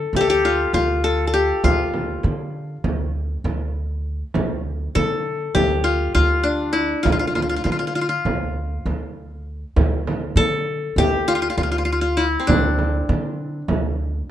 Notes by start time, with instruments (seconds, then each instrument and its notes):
Already playing: qanun A4
0.13 upright bass D2, qanun G4, frame drum
0.21 qanun A4
0.30 qanun G4
0.45 qanun F4
0.73 upright bass D2, qanun F4, frame drum
1.04 qanun A4
1.27 qanun A4
1.34 qanun G4
1.64 upright bass D2, qanun F4, frame drum
1.94 frame drum
2.23 upright bass D3, frame drum
2.84 upright bass D2, frame drum
3.44 upright bass D2, frame drum
4.34 upright bass D2, frame drum
4.95 upright bass D3, qanun A4, frame drum
5.55 upright bass D2, qanun G4, frame drum
5.84 qanun F4
6.15 upright bass D2, qanun F4, frame drum
6.43 qanun D4
6.73 qanun E4
7.03 upright bass D2, qanun F4, frame drum
7.12 qanun F4
7.19 qanun F4
7.27 qanun F4
7.35 qanun F4, frame drum
7.42 qanun F4
7.49 qanun F4
7.56 qanun F4
7.64 upright bass D3, qanun F4, frame drum
7.72 qanun F4
7.79 qanun F4
7.87 qanun F4
7.95 qanun F4
8.01 qanun F4
8.09 qanun F4
8.25 upright bass D2, frame drum
8.86 upright bass D2, frame drum
9.76 upright bass D2, frame drum
10.07 frame drum
10.36 upright bass D3, qanun A4, frame drum
10.96 upright bass D2, qanun G4, frame drum
11.28 qanun F4
11.35 qanun F4
11.42 qanun F4
11.50 qanun F4
11.57 upright bass D2, qanun F4, frame drum
11.63 qanun F4
11.72 qanun F4
11.78 qanun F4
11.85 qanun F4
11.92 qanun F4
12.01 qanun F4
12.17 qanun E4
12.40 qanun C4
12.47 upright bass D2, qanun D4, frame drum
12.79 frame drum
13.09 upright bass D3, frame drum
13.68 upright bass D2, frame drum